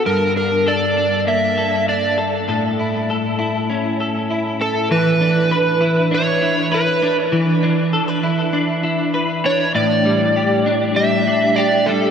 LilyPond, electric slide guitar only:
\new Staff \with { instrumentName = "Electric slide guitar" } { \time 4/4 \key e \dorian \tempo 4 = 99 bes'8 bes'8 d''4 e''4 d''8 r8 | r2. r8 a'8 | b'2 cis''4 b'8. r16 | r2. r8 cis''8 |
d''2 e''4 d''8 a'8 | }